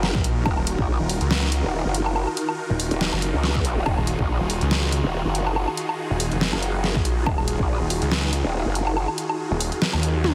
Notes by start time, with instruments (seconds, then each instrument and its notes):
Already playing: wobble bass F#1, supersaw synth D#3 D#4 F4 F#4 A#4
0.03 snare
0.15 detuned saw bass A#1, kick
0.24 closed hi-hat
0.46 wobble bass D#1, kick, low woodblock
0.57 detuned saw bass D#1, low woodblock
0.67 closed hi-hat
0.78 wobble bass A#1, kick
1.00 detuned saw bass D#1
1.09 open hi-hat
1.21 detuned saw bass C#2, closed hi-hat
1.31 snare
1.52 closed hi-hat
1.64 wobble bass D#1
1.85 wobble bass F#1
1.94 closed hi-hat
2.06 low woodblock
2.16 low woodblock
2.27 low woodblock
2.37 closed hi-hat
2.49 low woodblock
2.70 detuned saw bass D#1
2.80 open hi-hat
2.91 wobble bass D#1, closed hi-hat
3.01 snare
3.12 detuned saw bass F#1, low woodblock
3.22 closed hi-hat
3.34 wobble bass C#2
3.44 snare
3.55 kick
3.65 closed hi-hat
3.86 wobble bass D#1, supersaw synth G#4, kick, low woodblock
3.98 detuned saw bass D#1, low woodblock
4.07 closed hi-hat
4.19 wobble bass A#1, kick
4.40 detuned saw bass D#1
4.50 open hi-hat
4.61 detuned saw bass C#2, closed hi-hat
4.71 snare
4.92 closed hi-hat
5.04 wobble bass D#1
5.25 wobble bass F#1
5.35 closed hi-hat
5.46 low woodblock
5.56 low woodblock
5.68 low woodblock
5.77 closed hi-hat
5.89 low woodblock
6.10 detuned saw bass D#1
6.20 open hi-hat
6.32 detuned saw bass F1, closed hi-hat
6.41 snare
6.53 wobble bass F#1, low woodblock
6.63 closed hi-hat
6.84 snare
6.95 detuned saw bass A#1, kick
7.05 closed hi-hat
7.26 wobble bass D#1, kick, low woodblock
7.38 detuned saw bass D#1, low woodblock
7.48 closed hi-hat
7.59 wobble bass A#1, kick
7.80 detuned saw bass D#1
7.90 open hi-hat
8.02 detuned saw bass C#2, closed hi-hat
8.12 snare
8.33 closed hi-hat
8.44 wobble bass D#1
8.66 wobble bass F#1
8.75 closed hi-hat
8.87 low woodblock
8.97 low woodblock
9.08 low woodblock
9.18 closed hi-hat
9.29 low woodblock
9.51 detuned saw bass D#1
9.61 open hi-hat
9.72 closed hi-hat
9.82 snare
9.93 detuned saw bass D#2, low woodblock
10.03 closed hi-hat
10.24 snare, high tom